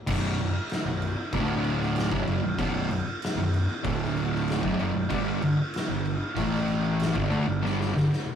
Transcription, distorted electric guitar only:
0.07 B1 F#2 B2
0.38 B1 F#2
0.54 muted distorted electric guitar stroke
0.86 B1 F#2
1.33 D2 A2 D3
2.11 B1 F#2
2.26 F#2 C#3
2.43 B1 F#2
2.58 B1 F#2 B2
2.90 B1 F#2
3.06 muted distorted electric guitar stroke
3.37 B1 F#2
3.83 D2 A2 D3
4.62 B1 F#2
4.78 F#2 C#3
4.94 B1 F#2
5.09 G2 D3 G3
5.41 G2 D3
5.57 muted distorted electric guitar stroke
5.88 G2 D3
6.35 A2 E3 A3
7.14 G2 D3
7.29 D3 A3
7.47 G2 D3
7.62 G2 D3 G3
7.94 G2 D3
8.10 muted distorted electric guitar stroke

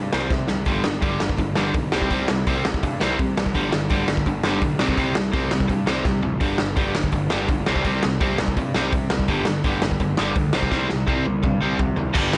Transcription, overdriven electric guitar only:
Already playing: C3 G3
0.13 C3 G3 C4
0.31 C3 G3
0.48 C3 G3
0.66 G2 D3 G3
0.85 G2 D3
1.01 G2 D3 G3
1.21 G2 D3
1.39 G2 D3
1.56 G2 D3 G3
1.74 G2 D3
1.92 C3 G3 C4
2.10 C3 G3 C4
2.29 C3 G3
2.47 C3 G3 C4
2.65 C3 G3
2.83 C3 G3
3.01 C3 G3 C4
3.20 C3 G3
3.37 C3 G3
3.55 G2 D3 G3
3.73 G2 D3
3.90 G2 D3 G3
4.08 G2 D3
4.27 G2 D3
4.44 G2 D3 G3
4.62 G2 D3
4.79 C3 G3 C4
4.97 C3 G3 C4
5.14 C3 G3
5.32 C3 G3 C4
5.50 C3 G3
5.68 C3 G3
5.86 C3 G3 C4
6.04 C3 G3
6.23 C3 G3
6.40 G2 D3 G3
6.58 G2 D3
6.76 G2 D3 G3
6.95 G2 D3
7.13 G2 D3
7.30 G2 D3 G3
7.48 G2 D3
7.66 C3 G3 C4
7.84 C3 G3 C4
8.03 C3 G3
8.21 C3 G3 C4
8.39 C3 G3
8.58 C3 G3
8.75 C3 G3 C4
8.93 C3 G3
9.10 C3 G3
9.28 G2 D3 G3
9.46 G2 D3
9.64 G2 D3 G3
9.82 G2 D3
10.00 G2 D3
10.18 G2 D3 G3
10.36 G2 D3
10.53 C3 G3 C4
10.71 C3 G3 C4
10.89 C3 G3
11.07 C3 G3 C4
11.25 C3 G3
11.43 C3 G3
11.61 C3 G3 C4
11.78 C3 G3
11.96 C3 G3
12.13 G2 D3 G3

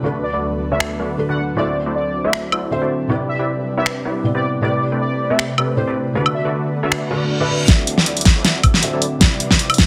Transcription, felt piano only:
0.02 D3 A3 F#4 B4
1.17 D3 A3 F#4 B4
1.55 D3 C4 F#4 E5
2.70 D3 C4 F#4 E5
3.07 C3 E4 B4
3.12 D5
4.23 C3 B3 E4 D5
4.61 C3 A3 E4 G4 B4 D5
5.76 C3 A3 E4 G4 B4 D5
6.13 D3 A3 F#4 B4
7.10 D3 A3 F#4 B4
7.39 D3 A3 F#4 E5
7.48 D3 A3 F#4 D5
7.66 D3 C4 F#4
7.70 E5
8.82 D3 C4 F#4 E5
9.19 C3 E4 B4 D5

